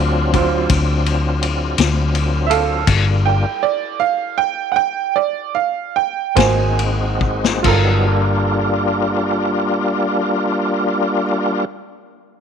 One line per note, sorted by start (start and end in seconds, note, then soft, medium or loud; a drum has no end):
0.00 0.66 D2 loud
0.00 2.84 F#3 medium
0.00 2.84 C4 medium
0.00 2.84 D4 medium
0.00 2.84 F4 medium
0.33 0.66 F#3 soft
0.33 0.67 C4 soft
0.33 0.67 F4 soft
0.33 kick medium
0.33 ride medium
0.69 1.74 D2 medium
0.69 kick loud
0.69 snare soft
0.69 ride medium
1.06 ride medium
1.43 ride medium
1.78 2.84 D2 medium
1.78 snare loud
1.78 ride medium
2.15 ride medium
2.46 2.85 A4 medium
2.46 2.51 E5 medium
2.51 2.87 F5 medium
2.51 ride medium
2.87 3.43 G1 loud
2.87 3.46 G3 medium
2.87 3.46 A#3 medium
2.87 3.46 D4 medium
2.87 3.46 F4 medium
2.87 kick loud
2.87 crash medium
2.87 ride medium
3.26 3.61 G5 medium
3.63 3.99 D5 medium
4.00 4.37 F5 medium
4.38 4.74 G5 medium
4.72 4.76 F#5 medium
4.76 5.14 G5 medium
5.16 5.54 D5 medium
5.55 5.94 F5 medium
5.96 6.36 G5 medium
6.35 7.61 G#1 loud
6.35 7.63 G#3 medium
6.35 7.60 A#3 soft
6.35 7.60 C4 soft
6.35 7.63 C4 medium
6.35 7.63 D#4 medium
6.35 7.61 F#4 soft
6.35 7.63 F#4 medium
6.35 6.75 C5 medium
6.35 6.77 G#5 medium
6.35 kick medium
6.35 snare loud
6.35 ride medium
6.79 ride medium
7.21 kick medium
7.44 snare medium
7.63 11.21 G1 loud
7.63 8.09 F#3 medium
7.63 8.07 G3 medium
7.63 8.09 B3 medium
7.63 8.09 D#4 medium
7.63 11.19 F4 medium
7.63 11.22 A4 medium
7.63 kick loud
7.63 crash medium
7.67 11.24 A#4 medium
8.08 11.65 G3 medium
8.08 11.65 A#3 medium
8.08 11.65 D4 medium
8.08 11.65 F4 medium